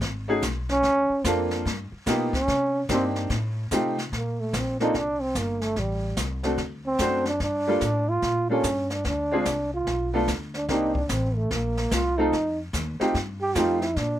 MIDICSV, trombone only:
0, 0, Header, 1, 2, 480
1, 0, Start_track
1, 0, Key_signature, -2, "major"
1, 0, Tempo, 410397
1, 975, Time_signature, 4, 2, 24, 8
1, 16602, End_track
2, 0, Start_track
2, 0, Title_t, "Trombone"
2, 0, Program_c, 0, 57
2, 823, Note_on_c, 0, 61, 124
2, 1487, Note_on_c, 0, 58, 87
2, 1504, Note_off_c, 0, 61, 0
2, 1782, Note_off_c, 0, 58, 0
2, 2737, Note_on_c, 0, 61, 107
2, 3337, Note_off_c, 0, 61, 0
2, 3408, Note_on_c, 0, 60, 94
2, 3585, Note_off_c, 0, 60, 0
2, 4860, Note_on_c, 0, 58, 80
2, 5147, Note_on_c, 0, 57, 75
2, 5165, Note_off_c, 0, 58, 0
2, 5344, Note_on_c, 0, 60, 75
2, 5362, Note_off_c, 0, 57, 0
2, 5616, Note_off_c, 0, 60, 0
2, 5623, Note_on_c, 0, 63, 96
2, 5814, Note_on_c, 0, 62, 94
2, 5832, Note_off_c, 0, 63, 0
2, 6093, Note_on_c, 0, 60, 90
2, 6110, Note_off_c, 0, 62, 0
2, 6286, Note_on_c, 0, 58, 82
2, 6304, Note_off_c, 0, 60, 0
2, 6577, Note_on_c, 0, 57, 90
2, 6595, Note_off_c, 0, 58, 0
2, 6765, Note_on_c, 0, 55, 79
2, 6782, Note_off_c, 0, 57, 0
2, 7234, Note_off_c, 0, 55, 0
2, 8022, Note_on_c, 0, 60, 101
2, 8465, Note_off_c, 0, 60, 0
2, 8505, Note_on_c, 0, 62, 95
2, 8658, Note_off_c, 0, 62, 0
2, 8691, Note_on_c, 0, 62, 99
2, 9460, Note_on_c, 0, 65, 114
2, 9478, Note_off_c, 0, 62, 0
2, 9934, Note_off_c, 0, 65, 0
2, 9941, Note_on_c, 0, 61, 92
2, 10427, Note_on_c, 0, 62, 87
2, 10445, Note_off_c, 0, 61, 0
2, 10591, Note_off_c, 0, 62, 0
2, 10604, Note_on_c, 0, 62, 90
2, 11338, Note_off_c, 0, 62, 0
2, 11390, Note_on_c, 0, 65, 87
2, 11829, Note_off_c, 0, 65, 0
2, 12346, Note_on_c, 0, 62, 92
2, 12516, Note_on_c, 0, 63, 102
2, 12534, Note_off_c, 0, 62, 0
2, 12804, Note_off_c, 0, 63, 0
2, 12811, Note_on_c, 0, 62, 84
2, 12994, Note_on_c, 0, 60, 79
2, 13012, Note_off_c, 0, 62, 0
2, 13283, Note_on_c, 0, 57, 85
2, 13301, Note_off_c, 0, 60, 0
2, 13482, Note_on_c, 0, 58, 90
2, 13500, Note_off_c, 0, 57, 0
2, 13962, Note_on_c, 0, 65, 108
2, 13979, Note_off_c, 0, 58, 0
2, 14245, Note_on_c, 0, 63, 100
2, 14263, Note_off_c, 0, 65, 0
2, 14727, Note_off_c, 0, 63, 0
2, 15683, Note_on_c, 0, 67, 108
2, 15862, Note_on_c, 0, 65, 96
2, 15879, Note_off_c, 0, 67, 0
2, 16151, Note_on_c, 0, 64, 95
2, 16168, Note_off_c, 0, 65, 0
2, 16343, Note_on_c, 0, 62, 92
2, 16360, Note_off_c, 0, 64, 0
2, 16602, Note_off_c, 0, 62, 0
2, 16602, End_track
0, 0, End_of_file